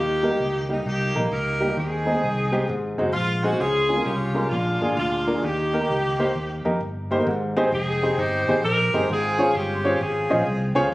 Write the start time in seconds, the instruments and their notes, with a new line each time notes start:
Already playing: fingered electric bass D#2, upright piano D#3, saxophone section A#3 D#4 G4
0.23 upright piano G3 A#3 D#4 A#4
0.30 upright piano G3 A#3 D#4 G4
0.40 fingered electric bass C#2
0.69 upright piano G3 A#3 D#4 G4, saxophone section D#4
0.86 fingered electric bass C2, saxophone section A#3 D#4 G4
1.15 fingered electric bass A#1, upright piano G3 A#3 D#4 A#4
1.32 fingered electric bass C#2, saxophone section D#4 G4 A#4
1.60 upright piano G3 A#3 D#4 G4
1.69 upright piano G3 A#3 D#4 G4
1.77 fingered electric bass D#2, upright piano D#3, saxophone section C4 D#4 G#4
2.06 upright piano G#3 C4 D#4 G#4
2.14 upright piano G#3 C4 D#4 G#4
2.24 fingered electric bass C2
2.52 upright piano G#3 C4 D#4 G4
2.68 fingered electric bass G#1, upright piano G#2
2.98 fingered electric bass F#1, upright piano G#3 C4 D#4 F#4
3.14 fingered electric bass A#1, saxophone section F4
3.44 upright piano G#3 C4 D#4 G#4, saxophone section F#4
3.52 upright piano G#3 C4 D#4 F#4
3.59 fingered electric bass C#2, upright piano C#3, saxophone section C#4 F4 G#4
3.89 upright piano G#3 C#4 F4 G#4
3.96 upright piano G#3 C#4 F4 A#4
4.04 fingered electric bass C2, saxophone section C#4 G4
4.34 upright piano G#3 C#4 F4 A#4
4.50 fingered electric bass A#1, upright piano A#2, saxophone section G#3 D4 F4
4.81 fingered electric bass G#1, upright piano A#3 D4 F4 G#4
4.97 fingered electric bass D2, saxophone section G#3 D4 F4
5.27 upright piano A#3 D4 F4 A#4
5.34 upright piano A#3 D4 F4 G#4
5.43 fingered electric bass D#2, upright piano D#3, saxophone section A#3 D#4 G4
5.73 upright piano A#3 D#4 G4 A#4
5.80 upright piano A#3 D#4 G4 A#4
5.90 fingered electric bass C#2
6.19 upright piano A#3 D#4 G4 C5
6.35 fingered electric bass D#2
6.65 fingered electric bass F2, upright piano A#3 D#4 G4 A#4
6.81 fingered electric bass G1
7.11 upright piano A#3 D#4 G4 C5
7.19 upright piano A#3 D#4 G4 A#4
7.27 fingered electric bass G#1, upright piano G#2
7.57 upright piano C4 D#4 G4 G#4 C5
7.72 fingered electric bass F1, saxophone section C4 D#4 G#4
8.03 upright piano C4 D#4 G4 G#4 C5
8.18 fingered electric bass G1, saxophone section D#4 G4 C5
8.48 fingered electric bass G#1, upright piano C4 D#4 G4 G#4 C5, saxophone section C5
8.64 fingered electric bass A#1, saxophone section D#4 G4 A#4
8.94 fingered electric bass G1, upright piano C4 D#4 G4 G#4 C5
9.09 fingered electric bass G#1, upright piano G#2, saxophone section C4 F4 G#4
9.39 upright piano C#4 F4 G#4 C5 C#5
9.55 fingered electric bass G1, saxophone section C4 C#4 G4
9.84 upright piano C#4 F4 G#4 C5 C#5
10.01 fingered electric bass G#1, saxophone section C4 F4 G#4
10.30 fingered electric bass A#1, upright piano C#4 F4 G#4 C5 D#5
10.47 fingered electric bass C2
10.75 fingered electric bass C#2, upright piano C#4 F4 G#4 C5 C#5